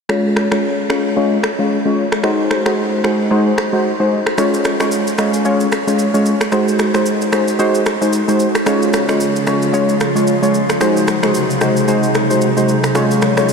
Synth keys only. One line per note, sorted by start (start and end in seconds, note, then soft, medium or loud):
0.09 0.48 G#3 medium
0.09 0.48 C#4 medium
0.09 0.48 F4 medium
0.09 0.48 C#5 medium
0.51 0.87 G#3 medium
0.51 0.87 C#4 medium
0.51 0.87 F4 medium
0.51 0.87 C#5 medium
0.89 1.14 G#3 medium
0.89 1.14 C#4 medium
0.89 1.15 F4 medium
0.89 1.15 C#5 medium
1.16 1.37 G#3 medium
1.16 1.38 C#4 medium
1.16 1.38 F4 medium
1.16 1.38 C#5 loud
1.59 1.78 G#3 medium
1.59 1.78 C#4 medium
1.59 1.78 F4 medium
1.59 1.78 C#5 medium
1.85 2.04 G#3 medium
1.85 2.04 C#4 medium
1.85 2.05 F4 medium
1.85 2.05 C#5 medium
2.23 2.62 G#3 medium
2.23 2.62 D#4 medium
2.23 2.62 F#4 medium
2.23 2.62 C5 medium
2.66 3.01 G#3 medium
2.66 3.01 D#4 medium
2.66 3.01 F#4 medium
2.66 3.01 C5 medium
3.04 3.29 G#3 medium
3.04 3.29 D#4 medium
3.04 3.29 F#4 medium
3.04 3.29 C5 medium
3.31 3.52 G#3 medium
3.31 3.52 D#4 medium
3.31 3.52 F#4 medium
3.31 3.52 C5 loud
3.73 3.92 G#3 medium
3.73 3.92 D#4 medium
3.73 3.92 F#4 medium
3.73 3.92 C5 medium
4.00 4.19 G#3 medium
4.00 4.19 D#4 medium
4.00 4.19 F#4 medium
4.00 4.19 C5 medium
4.38 4.76 G#3 medium
4.38 4.76 C#4 medium
4.38 4.77 F4 medium
4.38 4.77 C#5 medium
4.80 5.15 G#3 medium
4.80 5.15 C#4 medium
4.80 5.16 F4 medium
4.80 5.16 C#5 medium
5.18 5.43 G#3 medium
5.18 5.43 C#4 medium
5.18 5.43 F4 medium
5.18 5.43 C#5 medium
5.45 5.66 G#3 medium
5.45 5.66 C#4 medium
5.45 5.66 F4 medium
5.45 5.66 C#5 loud
5.87 6.06 G#3 medium
5.87 6.06 C#4 medium
5.87 6.06 F4 medium
5.87 6.07 C#5 medium
6.14 6.33 G#3 medium
6.14 6.33 C#4 medium
6.14 6.33 F4 medium
6.14 6.33 C#5 medium
6.52 6.91 G#3 medium
6.52 6.91 D#4 medium
6.52 6.91 F#4 medium
6.52 6.91 C5 medium
6.94 7.30 G#3 medium
6.94 7.30 D#4 medium
6.94 7.30 F#4 medium
6.94 7.30 C5 medium
7.32 7.57 G#3 medium
7.32 7.57 D#4 medium
7.32 7.57 F#4 medium
7.32 7.58 C5 medium
7.59 7.80 G#3 medium
7.59 7.80 D#4 medium
7.59 7.80 F#4 medium
7.59 7.81 C5 loud
8.01 8.20 G#3 medium
8.01 8.21 D#4 medium
8.01 8.21 F#4 medium
8.01 8.21 C5 medium
8.28 8.47 G#3 medium
8.28 8.47 D#4 medium
8.28 8.47 F#4 medium
8.28 8.48 C5 medium
8.66 9.05 G#3 medium
8.66 9.05 C#4 medium
8.66 9.05 F4 medium
8.66 9.05 C#5 medium
9.08 9.44 G#3 medium
9.08 9.44 C#4 medium
9.08 9.44 F4 medium
9.08 9.44 C#5 medium
9.46 9.72 G#3 medium
9.46 9.72 C#4 medium
9.46 9.72 F4 medium
9.46 9.72 C#5 medium
9.73 9.94 G#3 medium
9.73 9.95 C#4 medium
9.73 9.95 F4 medium
9.73 9.95 C#5 loud
10.15 10.35 G#3 medium
10.15 10.35 C#4 medium
10.15 10.35 F4 medium
10.15 10.35 C#5 medium
10.42 10.61 G#3 medium
10.42 10.62 C#4 medium
10.42 10.62 F4 medium
10.42 10.62 C#5 medium
10.80 11.19 G#3 medium
10.80 11.19 D#4 medium
10.80 11.19 F#4 medium
10.80 11.19 C5 medium
11.23 11.58 G#3 medium
11.23 11.58 D#4 medium
11.23 11.58 F#4 medium
11.23 11.59 C5 medium
11.61 11.86 G#3 medium
11.61 11.86 D#4 medium
11.61 11.86 F#4 medium
11.61 11.86 C5 medium
11.88 12.09 G#3 medium
11.88 12.09 D#4 medium
11.88 12.09 F#4 medium
11.88 12.09 C5 loud
12.30 12.49 G#3 medium
12.30 12.49 D#4 medium
12.30 12.49 F#4 medium
12.30 12.49 C5 medium
12.57 12.76 G#3 medium
12.57 12.76 D#4 medium
12.57 12.76 F#4 medium
12.57 12.76 C5 medium
12.95 13.33 G#3 medium
12.95 13.34 C#4 medium
12.95 13.34 F4 medium
12.95 13.34 C#5 medium
13.37 13.53 G#3 medium
13.37 13.53 C#4 medium
13.37 13.53 F4 medium
13.37 13.53 C#5 medium